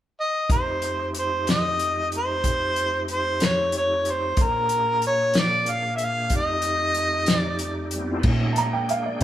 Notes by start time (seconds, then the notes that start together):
0.21 D#5
0.49 F2 A3 D#4 G4 C5, kick, closed hi-hat
0.82 closed hi-hat
1.15 C5, closed hi-hat
1.47 D#5, snare, closed hi-hat
1.79 closed hi-hat
2.12 closed hi-hat
2.17 C5
2.44 kick, closed hi-hat
2.76 closed hi-hat
3.08 closed hi-hat
3.13 C5
3.40 snare, closed hi-hat
3.46 C#5
3.72 closed hi-hat
3.78 C#5
4.05 closed hi-hat
4.11 C5
4.37 A#2 A#3 D4 G#4, kick, closed hi-hat
4.43 A#4
4.69 closed hi-hat
5.02 closed hi-hat
5.07 C#5
5.34 snare, closed hi-hat
5.40 D5
5.66 closed hi-hat
5.71 F5
5.96 E5, closed hi-hat
6.04 F5
6.30 F2 A3 D#4 G4, kick, closed hi-hat
6.37 D#5
6.62 closed hi-hat
6.94 closed hi-hat
7.26 snare, closed hi-hat
7.36 D5
7.59 closed hi-hat
7.91 G3, closed hi-hat
7.97 A3 B3
8.02 C4 D4
8.08 E4 F4
8.13 G4 A4
8.20 B4 C5, crash
8.24 A#2 A3 C#4 D#4 G#4, kick
8.53 A5, closed hi-hat
8.57 A#3 D4 G#4 G5 A#5
8.73 G5
8.89 F5, closed hi-hat
9.06 D5